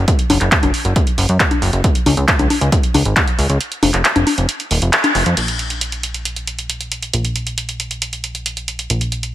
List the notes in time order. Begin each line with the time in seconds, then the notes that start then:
0.08 kick, closed hi-hat
0.19 closed hi-hat
0.30 F#1, open hi-hat, high conga
0.41 F#1, clap, closed hi-hat
0.52 kick, clap, closed hi-hat
0.63 F#1, closed hi-hat, high conga
0.74 open hi-hat
0.85 F#1, closed hi-hat
0.96 kick, closed hi-hat
1.07 closed hi-hat
1.18 F#1, open hi-hat
1.29 F#2, closed hi-hat
1.40 kick, clap, closed hi-hat
1.51 closed hi-hat, high conga
1.62 F#1, open hi-hat
1.73 F#1, closed hi-hat
1.84 kick, closed hi-hat
1.95 closed hi-hat
2.06 C#2, open hi-hat, high conga
2.17 C#2, closed hi-hat
2.28 kick, clap, closed hi-hat
2.39 C#2, closed hi-hat, high conga
2.50 open hi-hat, high conga
2.61 C#2, closed hi-hat
2.72 kick, closed hi-hat
2.83 closed hi-hat
2.94 C#2, open hi-hat, high conga
3.05 G#1, closed hi-hat
3.16 kick, clap, closed hi-hat
3.28 closed hi-hat
3.38 C#2, open hi-hat
3.49 C#2, closed hi-hat
3.61 closed hi-hat
3.72 closed hi-hat
3.83 F1, open hi-hat, high conga
3.94 F1, clap, closed hi-hat
4.05 clap, closed hi-hat
4.16 F1, closed hi-hat, high conga
4.27 open hi-hat, high conga
4.38 F1, closed hi-hat
4.49 closed hi-hat
4.60 closed hi-hat
4.71 D#1, open hi-hat
4.82 F1, closed hi-hat
4.93 clap, closed hi-hat
5.04 closed hi-hat, high conga
5.15 F1, open hi-hat
5.26 F2, closed hi-hat
5.37 A#1, closed hi-hat, crash
5.48 closed hi-hat
5.59 closed hi-hat
5.70 closed hi-hat
5.81 closed hi-hat
5.92 closed hi-hat
6.03 closed hi-hat
6.14 closed hi-hat
6.25 closed hi-hat
6.36 closed hi-hat
6.47 closed hi-hat
6.59 closed hi-hat
6.70 closed hi-hat
6.81 closed hi-hat
6.92 closed hi-hat
7.03 closed hi-hat
7.14 A#1, closed hi-hat
7.25 closed hi-hat
7.36 closed hi-hat
7.47 closed hi-hat
7.58 closed hi-hat
7.69 closed hi-hat
7.80 closed hi-hat
7.91 closed hi-hat
8.02 closed hi-hat
8.13 closed hi-hat
8.24 closed hi-hat
8.35 closed hi-hat
8.46 closed hi-hat
8.57 closed hi-hat
8.68 closed hi-hat
8.79 closed hi-hat
8.90 A#1, closed hi-hat
9.01 closed hi-hat
9.12 closed hi-hat
9.23 closed hi-hat